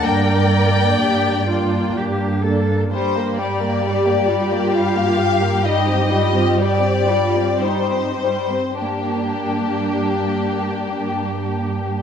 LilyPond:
<<
  \new Staff \with { instrumentName = "Violin section" } { \time 3/4 \key g \minor \tempo 4 = 62 g''2 r4 | c''8 d''4. f''4 | ees''4 d''4 c''4 | g'2. | }
  \new Staff \with { instrumentName = "Cello section" } { \time 3/4 \key g \minor bes'4 g'8 f'8 g'8 a'8 | g,2.~ | g,2~ g,8. r16 | g,2. | }
  \new Staff \with { instrumentName = "Viola section" } { \time 3/4 \key g \minor <bes d'>8 <bes d'>4 <bes d'>4 <bes d'>8 | r4 g'8 f'4. | ees'8 f'8 g'8 f'8 ees'8 r8 | bes2. | }
  \new Staff \with { instrumentName = "Violin section" } { \time 3/4 \key g \minor << { d''2 r4 | g'2.~ | g'2~ g'8. r16 | <d' g'>2. | } \\ { r2. | g16 bes16 g16 bes16 g16 bes16 g16 bes16 g16 bes16 g16 bes16 | g16 c'16 g16 c'16 g16 c'16 g16 c'16 g16 c'16 g16 c'16 | r2. | } >> }
  \new Staff \with { instrumentName = "Double bass section" } { \clef bass \time 3/4 \key g \minor g,4 g,4 g,4 | r2. | r2. | r2. | }
>>